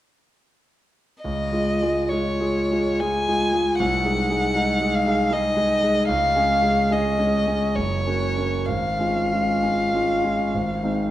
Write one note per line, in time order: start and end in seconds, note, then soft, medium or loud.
1.24 1.52 C#2 soft
1.24 2.11 D#5 soft
1.52 1.79 G#3 soft
1.52 1.79 F4 soft
1.52 1.79 G#4 soft
1.82 2.09 G#3 soft
1.82 2.09 F4 soft
1.82 2.09 G#4 soft
2.09 2.39 G#3 soft
2.09 2.39 F4 soft
2.09 2.39 G#4 soft
2.09 3.02 C#5 soft
2.40 2.69 G#3 soft
2.40 2.69 F4 soft
2.40 2.69 G#4 soft
2.71 2.98 G#3 soft
2.71 2.98 F4 soft
2.71 2.98 G#4 soft
3.00 3.26 G#3 soft
3.00 3.26 F4 soft
3.00 3.26 G#4 soft
3.00 3.79 G#5 medium
3.28 3.51 G#3 soft
3.28 3.51 F4 soft
3.28 3.52 G#4 soft
3.53 3.77 G#3 soft
3.53 3.77 F4 soft
3.53 3.77 G#4 soft
3.80 4.05 C2 soft
3.80 4.97 F#5 medium
4.05 4.28 G#3 soft
4.05 4.28 D#4 soft
4.05 4.29 G#4 soft
4.30 4.53 G#3 soft
4.30 4.53 D#4 soft
4.30 4.54 G#4 soft
4.56 4.79 G#3 soft
4.56 4.79 D#4 soft
4.56 4.79 G#4 soft
4.80 5.04 G#3 soft
4.80 5.04 D#4 soft
4.80 5.04 G#4 soft
4.95 5.34 F5 medium
5.06 5.29 G#3 soft
5.06 5.29 D#4 soft
5.06 5.30 G#4 soft
5.31 5.54 G#3 soft
5.31 5.54 D#4 soft
5.31 5.55 G#4 soft
5.31 6.09 D#5 medium
5.57 5.80 G#3 soft
5.57 5.80 D#4 soft
5.57 5.80 G#4 soft
5.83 6.06 G#3 soft
5.83 6.07 D#4 soft
5.83 6.07 G#4 soft
6.09 6.35 C#2 soft
6.09 6.94 F5 medium
6.36 6.60 G#3 soft
6.36 6.61 C#4 soft
6.36 6.61 G#4 soft
6.62 6.87 G#3 soft
6.62 6.88 C#4 soft
6.62 6.88 G#4 soft
6.91 7.16 G#3 soft
6.91 7.16 C#4 soft
6.91 7.16 G#4 soft
6.91 7.78 D#5 soft
7.19 7.44 G#3 soft
7.19 7.44 C#4 soft
7.19 7.44 G#4 soft
7.47 7.73 G#3 soft
7.47 7.73 C#4 soft
7.47 7.73 G#4 soft
7.76 8.04 F#1 soft
7.76 8.68 C#5 soft
8.06 8.33 A#3 soft
8.06 8.33 C#4 soft
8.06 8.33 F#4 soft
8.37 8.64 A#3 soft
8.37 8.64 C#4 soft
8.37 8.64 F#4 soft
8.66 8.98 G#1 soft
8.66 10.98 F5 soft
8.99 9.27 G#3 soft
8.99 9.28 C#4 soft
8.99 9.28 F4 soft
9.32 9.59 G#3 soft
9.32 9.60 C#4 soft
9.32 9.60 F4 soft
9.63 9.90 G#3 soft
9.63 9.90 C#4 soft
9.63 9.91 F4 soft
9.94 10.20 G#3 soft
9.94 10.21 C#4 soft
9.94 10.21 F4 soft
10.24 10.50 G#3 soft
10.24 10.50 C#4 soft
10.24 10.51 F4 soft
10.54 10.83 G#1 soft
10.83 11.10 G#3 soft
10.83 11.11 C4 soft
10.83 11.11 D#4 soft